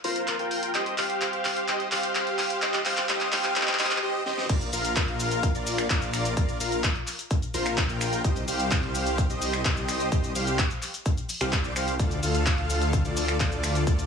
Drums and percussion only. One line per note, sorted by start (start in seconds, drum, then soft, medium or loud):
0.04 open hi-hat loud
0.16 closed hi-hat medium
0.28 clap medium
0.28 closed hi-hat medium
0.39 closed hi-hat soft
0.51 open hi-hat loud
0.63 closed hi-hat medium
0.74 clap medium
0.74 closed hi-hat medium
0.86 closed hi-hat soft
0.98 clap medium
0.98 open hi-hat loud
1.10 closed hi-hat soft
1.21 clap medium
1.21 closed hi-hat medium
1.33 closed hi-hat soft
1.45 clap medium
1.45 open hi-hat medium
1.56 closed hi-hat medium
1.68 clap medium
1.68 closed hi-hat medium
1.80 closed hi-hat soft
1.92 clap medium
1.92 open hi-hat loud
2.03 closed hi-hat medium
2.15 clap medium
2.15 closed hi-hat medium
2.27 closed hi-hat soft
2.38 clap medium
2.38 open hi-hat loud
2.50 closed hi-hat medium
2.62 clap medium
2.62 closed hi-hat soft
2.74 clap medium
2.74 closed hi-hat soft
2.85 clap loud
2.85 open hi-hat loud
2.97 clap medium
2.97 closed hi-hat medium
3.09 clap loud
3.09 closed hi-hat medium
3.21 clap medium
3.21 closed hi-hat soft
3.32 clap loud
3.32 open hi-hat loud
3.44 clap medium
3.44 closed hi-hat medium
3.56 clap loud
3.56 closed hi-hat medium
3.62 clap medium
3.67 clap loud
3.67 closed hi-hat soft
3.73 clap medium
3.79 clap loud
3.79 open hi-hat loud
3.85 clap medium
3.91 clap medium
3.91 closed hi-hat soft
3.97 clap medium
4.26 snare medium
4.38 snare medium
4.49 kick loud
4.49 closed hi-hat medium
4.49 crash loud
4.49 shaker soft
4.61 closed hi-hat soft
4.61 shaker soft
4.73 open hi-hat loud
4.73 shaker medium
4.85 closed hi-hat medium
4.85 shaker soft
4.96 kick loud
4.96 clap loud
4.96 closed hi-hat medium
4.96 shaker soft
5.08 closed hi-hat soft
5.20 open hi-hat medium
5.20 shaker medium
5.31 closed hi-hat medium
5.31 shaker soft
5.43 kick loud
5.43 closed hi-hat medium
5.43 shaker soft
5.55 closed hi-hat soft
5.55 shaker soft
5.67 open hi-hat loud
5.67 shaker medium
5.78 finger snap medium
5.78 closed hi-hat medium
5.78 shaker soft
5.90 kick loud
5.90 clap loud
5.90 closed hi-hat medium
5.90 shaker soft
6.02 closed hi-hat soft
6.02 shaker soft
6.13 finger snap medium
6.13 open hi-hat loud
6.13 shaker medium
6.25 closed hi-hat medium
6.25 shaker soft
6.37 kick loud
6.37 closed hi-hat medium
6.37 shaker soft
6.49 closed hi-hat soft
6.49 shaker soft
6.60 open hi-hat loud
6.60 shaker medium
6.72 closed hi-hat medium
6.72 shaker soft
6.84 kick loud
6.84 clap loud
6.84 closed hi-hat medium
6.84 shaker soft
6.96 closed hi-hat soft
7.07 clap soft
7.07 open hi-hat loud
7.07 shaker medium
7.19 closed hi-hat medium
7.19 shaker soft
7.31 kick loud
7.31 closed hi-hat medium
7.31 shaker soft
7.42 closed hi-hat soft
7.42 shaker soft
7.54 open hi-hat loud
7.54 shaker medium
7.66 finger snap medium
7.66 closed hi-hat medium
7.66 shaker soft
7.78 kick loud
7.78 clap loud
7.78 closed hi-hat medium
7.78 shaker soft
7.89 closed hi-hat soft
7.89 shaker soft
8.01 finger snap medium
8.01 open hi-hat medium
8.01 shaker medium
8.13 closed hi-hat medium
8.13 shaker soft
8.24 kick loud
8.24 closed hi-hat medium
8.24 shaker soft
8.36 closed hi-hat soft
8.36 shaker soft
8.48 open hi-hat loud
8.48 shaker medium
8.60 closed hi-hat medium
8.60 shaker soft
8.71 kick loud
8.71 clap loud
8.71 closed hi-hat medium
8.71 shaker soft
8.83 closed hi-hat soft
8.95 open hi-hat loud
8.95 shaker medium
9.07 closed hi-hat medium
9.07 shaker soft
9.18 kick loud
9.18 closed hi-hat medium
9.18 shaker soft
9.30 closed hi-hat soft
9.30 shaker soft
9.42 open hi-hat loud
9.42 shaker medium
9.53 finger snap medium
9.53 closed hi-hat medium
9.53 shaker soft
9.65 kick loud
9.65 clap loud
9.65 closed hi-hat medium
9.65 shaker soft
9.77 closed hi-hat soft
9.77 shaker soft
9.89 finger snap medium
9.89 open hi-hat loud
9.89 shaker medium
10.00 closed hi-hat medium
10.00 shaker soft
10.12 kick loud
10.12 closed hi-hat soft
10.12 shaker soft
10.24 closed hi-hat soft
10.24 shaker soft
10.35 open hi-hat loud
10.35 shaker medium
10.47 closed hi-hat soft
10.47 shaker soft
10.59 kick loud
10.59 clap loud
10.59 closed hi-hat medium
10.59 shaker soft
10.71 closed hi-hat soft
10.71 shaker soft
10.82 clap soft
10.82 open hi-hat loud
10.82 shaker medium
10.94 closed hi-hat medium
10.94 shaker soft
11.06 kick loud
11.06 closed hi-hat medium
11.06 shaker soft
11.17 closed hi-hat soft
11.17 shaker soft
11.29 open hi-hat loud
11.29 shaker medium
11.41 finger snap medium
11.41 closed hi-hat soft
11.41 shaker soft
11.53 kick loud
11.53 clap loud
11.53 closed hi-hat medium
11.53 shaker soft
11.64 closed hi-hat soft
11.64 shaker soft
11.76 finger snap medium
11.76 open hi-hat loud
11.76 shaker medium
11.88 closed hi-hat medium
11.88 shaker soft
11.99 kick loud
11.99 closed hi-hat medium
11.99 shaker soft
12.11 closed hi-hat soft
12.11 shaker soft
12.23 open hi-hat loud
12.23 shaker medium
12.35 closed hi-hat soft
12.35 shaker soft
12.46 kick loud
12.46 clap loud
12.46 closed hi-hat medium
12.46 shaker soft
12.58 closed hi-hat soft
12.70 open hi-hat loud
12.70 shaker medium
12.81 closed hi-hat medium
12.81 shaker soft
12.93 kick loud
12.93 closed hi-hat soft
12.93 shaker soft
13.05 closed hi-hat soft
13.05 shaker soft
13.17 open hi-hat loud
13.17 shaker medium
13.28 finger snap medium
13.28 closed hi-hat soft
13.28 shaker soft
13.40 kick loud
13.40 clap loud
13.40 closed hi-hat medium
13.40 shaker soft
13.52 closed hi-hat soft
13.52 shaker soft
13.64 finger snap medium
13.64 open hi-hat medium
13.64 shaker medium
13.75 closed hi-hat medium
13.75 shaker soft
13.87 kick loud
13.87 closed hi-hat medium
13.87 shaker soft
13.99 closed hi-hat soft
13.99 shaker soft